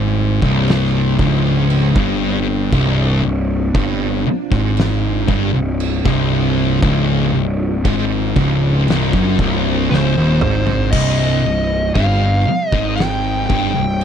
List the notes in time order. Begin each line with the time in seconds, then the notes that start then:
Already playing: G#1 G#2 C3 G3 D4
0.42 C1 C2, kick
0.68 snare, crash
1.19 C#1 C#2, kick
1.70 crash
1.96 G1 G2, kick
2.71 C1 C2 F3, kick, crash
3.25 C1 C2
3.75 G1 G2, kick, crash
4.25 muted distorted electric guitar stroke, muted picked electric bass stroke
4.51 G#1 G#2, kick
4.77 snare, crash
5.27 G1 G2, kick
5.53 C1 C2
5.80 crash
6.05 C1 C2, kick
6.83 C#1 C#2, kick, crash
7.33 C1 C2
7.85 G#1 G#2, kick, crash
8.36 C#1 C#2, kick
8.88 C1 C2, snare, crash
9.13 F#1 F#2, kick
9.39 C1 C2, kick
9.90 C#1 C#2 C5, snare
10.16 D#1 D#2
10.41 G#1 G#2, mid tom
10.67 floor tom
10.91 C1 C2 G3 D#5, kick, crash
11.45 C1 C2
11.94 G1 G2 F5, kick, crash
12.47 muted distorted electric guitar stroke, muted picked electric bass stroke
12.69 G#1 G#2 D#5, kick
12.96 G5, crash
13.00 snare
13.46 G1 G2 G5, kick
13.74 C1 C2
14.01 crash